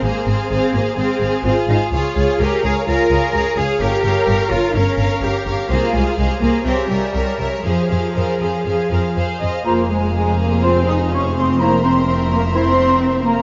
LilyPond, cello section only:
\new Staff \with { instrumentName = "Cello section" } { \time 4/4 \key f \minor \tempo 4 = 126 bes8 c'8 c'8 bes8 c'4 c'8 ees'8 | f'4 g'8 aes'8 bes'4. aes'8 | g'4. f'8 des'4 r4 | bes8 aes8 aes8 bes8 c'8 g4. |
f2. r4 | f,1~ | f,1 | }